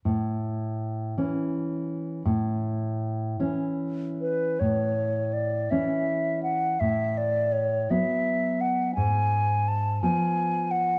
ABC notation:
X:1
M:6/8
L:1/8
Q:3/8=55
K:A
V:1 name="Flute"
z6 | z4 z B | c2 d e2 f | e d c e2 f |
g2 a g2 f |]
V:2 name="Nylon-string guitar" clef=bass
A,,3 [E,C]3 | A,,3 [E,C]3 | A,,3 [E,C]3 | A,,3 [F,B,]3 |
G,,3 [^E,B,]3 |]